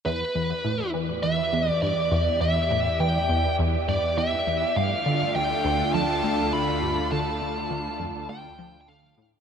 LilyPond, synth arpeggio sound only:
\new Staff \with { instrumentName = "Synth arpeggio sound" } { \clef bass \time 4/4 \key e \phrygian \tempo 4 = 102 e,8 e,8 a,8 e8 e,8 e,8 g,8 e,8 | e,8 a,8 e8 e,8 e,8 g,8 e,8 e,8 | g,8 d8 d,8 d,8 f,8 d,8 d,8 g,8 | d8 d,8 d,8 f,8 d,8 f8 d8 a,8 | }